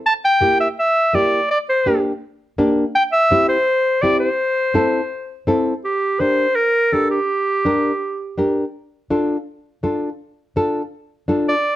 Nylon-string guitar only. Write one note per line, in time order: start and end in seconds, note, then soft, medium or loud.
0.41 0.67 A#3 medium
0.41 0.67 E4 medium
0.41 0.67 G4 medium
1.13 1.39 A#3 medium
1.13 1.39 E4 medium
1.13 1.40 G4 medium
1.86 2.11 A#3 medium
1.86 2.12 D4 medium
1.86 2.12 G4 medium
2.58 2.84 A#3 medium
2.58 2.84 D4 medium
2.58 2.84 G4 medium
3.31 3.56 C4 medium
3.31 3.56 E4 medium
3.31 3.57 G4 medium
4.03 4.28 C4 medium
4.03 4.29 E4 medium
4.03 4.29 G4 medium
4.74 5.00 C4 medium
4.74 5.00 E4 medium
4.74 5.01 A4 medium
5.47 5.73 C4 medium
5.47 5.73 E4 medium
5.47 5.73 A4 medium
6.20 6.46 D4 medium
6.20 6.46 G4 medium
6.20 6.46 A#4 medium
6.92 7.18 D4 medium
6.92 7.18 G4 medium
6.92 7.18 A#4 medium
7.65 7.91 D4 medium
7.65 7.91 G4 medium
7.65 7.91 A#4 medium
8.38 8.63 D4 medium
8.38 8.64 G4 medium
8.38 8.64 A#4 medium
9.10 9.36 D4 medium
9.10 9.36 F4 medium
9.10 9.36 A4 medium
9.83 10.09 D4 medium
9.83 10.09 F4 medium
9.83 10.09 A4 medium
10.56 10.81 D4 medium
10.56 10.81 F4 medium
10.56 10.82 A4 medium
11.28 11.53 D4 medium
11.28 11.54 F4 medium
11.28 11.54 A4 medium